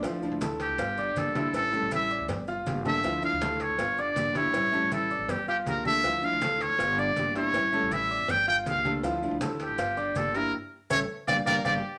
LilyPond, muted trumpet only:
\new Staff \with { instrumentName = "Muted trumpet" } { \time 4/4 \key d \minor \tempo 4 = 160 r4. g'4. a'4 | a'4 e''4 r4. e''8~ | e''8 f''4 cis''4 d''4 cis''8~ | cis''4 a'4 g'8 g'8 bes'8 e''8~ |
e''8 f''4 cis''4 d''4 cis''8~ | cis''4 e''4 g''8 g''8 f''8. r16 | r4. g'4. a'8 bes'8 | r4 cis''8 r8 d''8 d''8 d''8 r8 | }